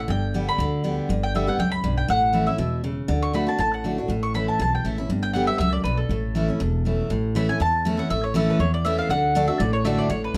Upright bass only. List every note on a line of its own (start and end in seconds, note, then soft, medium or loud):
0.08 0.48 G1 medium
0.58 0.98 D2 loud
1.09 1.49 G1 medium
1.59 1.80 C#2 medium
1.84 2.05 B1 medium
2.09 2.49 A1 medium
2.59 2.98 E1 medium
3.09 3.49 D2 medium
3.59 3.99 A1 medium
4.08 4.48 A1 medium
4.59 4.81 B1 medium
4.84 5.06 A1 medium
5.09 5.49 G1 medium
5.59 5.81 C#2 medium
5.84 6.06 B1 medium
6.09 6.49 A1 medium
6.61 7.00 E1 medium
7.10 7.50 A1 medium
7.60 8.00 E2 loud
8.10 8.50 A1 medium
8.59 8.99 E2 medium
9.09 9.49 D2 medium
9.60 10.00 A1 loud
10.10 10.30 A1 medium
10.34 10.37 C#2 medium